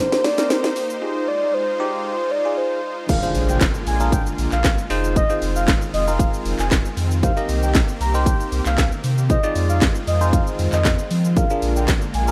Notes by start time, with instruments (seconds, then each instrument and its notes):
Already playing: supersaw synth A#3 D#4 G4 C5
0.00 soft synth lead C5
0.12 snare, shaker
0.24 soft synth lead D5, snare, open hi-hat, shaker
0.38 tine electric piano C4 D#4 A#4, snare, shaker
0.49 soft synth lead C5, snare, closed hi-hat, shaker
0.64 snare, shaker
0.76 open hi-hat, shaker
0.90 shaker
1.02 supersaw synth G#3 F4, tine electric piano D#4 F4 G#4, soft synth lead C5
1.28 soft synth lead D5
1.54 soft synth lead C5
1.79 tine electric piano D#4 F4 G4
2.05 soft synth lead C5
2.31 soft synth lead D5
2.45 tine electric piano D#4 F4 G#4
2.57 soft synth lead C5
3.09 supersaw synth D3 G#3 A#3 F4, tine electric piano D4 F4 G#4 A#4, analog synth lead F5, kick, closed hi-hat, crash, impact, shaker
3.23 tine electric piano D4 F4 G#4 C5, shaker
3.35 sub bass A#1, open hi-hat, shaker
3.49 analog synth lead G5, shaker
3.61 kick, snare, clap, closed hi-hat, shaker
3.74 shaker
3.87 sub bass A#1, analog synth lead G#5, open hi-hat, shaker
4.00 tine electric piano D4 F4 G#4 A#4, shaker
4.12 analog synth lead G5, kick, closed hi-hat, shaker
4.26 shaker
4.38 sub bass A#1, open hi-hat, shaker
4.52 sub bass A#1, analog synth lead F5, clap, shaker
4.64 kick, snare, clap, closed hi-hat, shaker
4.78 shaker
4.90 sub bass F1, supersaw synth D#3 G#3 C4 F4, tine electric piano D#4 F4 G#4 C5, open hi-hat, shaker
5.04 shaker
5.16 analog synth lead D#5, kick, closed hi-hat, shaker
5.30 tine electric piano D#4 F4 G#4 C5, shaker
5.42 sub bass F1, open hi-hat, shaker
5.56 analog synth lead F5, shaker
5.68 kick, snare, clap, closed hi-hat, shaker
5.82 shaker
5.94 sub bass F1, analog synth lead D#5, open hi-hat, shaker
6.07 tine electric piano D#4 F4 G#4 A#4, shaker
6.19 analog synth lead F5, kick, closed hi-hat, shaker
6.34 shaker
6.45 sub bass F1, open hi-hat, shaker
6.59 sub bass F1, analog synth lead G#5, clap, shaker
6.71 kick, snare, clap, closed hi-hat, shaker
6.85 shaker
6.97 sub bass F2, open hi-hat, shaker
7.11 shaker
7.23 supersaw synth A#3 G4, tine electric piano D#4 G4 A#4 C5, analog synth lead F5, kick, closed hi-hat, shaker
7.37 tine electric piano D#4 G4 A#4 D#5, shaker
7.49 sub bass C2, open hi-hat, shaker
7.63 analog synth lead G5, shaker
7.75 kick, snare, clap, closed hi-hat, shaker
7.88 shaker
8.01 sub bass C2, analog synth lead A#5, open hi-hat, shaker
8.14 tine electric piano D#4 G4 A#4 C5, shaker
8.26 analog synth lead G5, kick, closed hi-hat, shaker
8.40 shaker
8.52 sub bass C2, open hi-hat, shaker
8.66 sub bass C2, analog synth lead F5, clap, shaker
8.78 kick, snare, clap, closed hi-hat, shaker
8.92 shaker
9.04 sub bass C3, open hi-hat, shaker
9.18 shaker
9.29 supersaw synth D#3 G#3 C4 F4, tine electric piano D#4 F4 G#4 C5, analog synth lead D#5, kick, closed hi-hat, shaker
9.43 tine electric piano D#4 F4 G#4 D5, shaker
9.55 sub bass F2, open hi-hat, shaker
9.69 analog synth lead F5, shaker
9.82 kick, snare, clap, closed hi-hat, shaker
9.95 shaker
10.07 sub bass F2, analog synth lead D#5, open hi-hat, shaker
10.21 tine electric piano D#4 F4 G#4 C5, shaker
10.33 analog synth lead F5, kick, closed hi-hat, shaker
10.47 shaker
10.59 sub bass F2, open hi-hat, shaker
10.72 sub bass F2, analog synth lead D#5, clap, shaker
10.85 kick, snare, clap, closed hi-hat, shaker
10.99 shaker
11.11 sub bass F3, open hi-hat, shaker
11.25 shaker
11.37 supersaw synth D3 G#3 A#3 F4, tine electric piano D4 F4 G#4 A#4, analog synth lead F5, kick, closed hi-hat, shaker
11.50 tine electric piano D4 F4 G#4 A#4, shaker
11.62 sub bass A#1, open hi-hat, shaker
11.76 analog synth lead G5, shaker
11.88 kick, snare, clap, closed hi-hat, shaker
12.02 shaker
12.14 sub bass A#1, analog synth lead G#5, open hi-hat, shaker
12.28 tine electric piano D4 F4 G#4, shaker